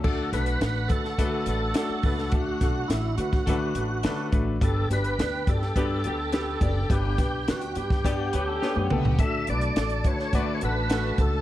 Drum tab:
CC |x---------------|----------------|----------------|----------------|
HH |--xxx-x-x-x-x-o-|x-x-x-x-x-x-x-x-|x-xxx-x-x-x-x-x-|x-x-xxx-x-x-----|
SD |--o-o--o----o--o|--o-o--o----o---|--o-o--o----o---|--o-o--o----o---|
T1 |----------------|----------------|----------------|-------------o--|
T2 |----------------|----------------|----------------|--------------o-|
FT |----------------|----------------|----------------|---------------o|
BD |o-----o-o-----o-|o-o----oo-----o-|o-----o-o-----o-|o-o----oo-------|

CC |----------------|
HH |x-xxxxx-x-x-x-x-|
SD |----o--o----o---|
T1 |----------------|
T2 |----------------|
FT |----------------|
BD |o-----o-o-----o-|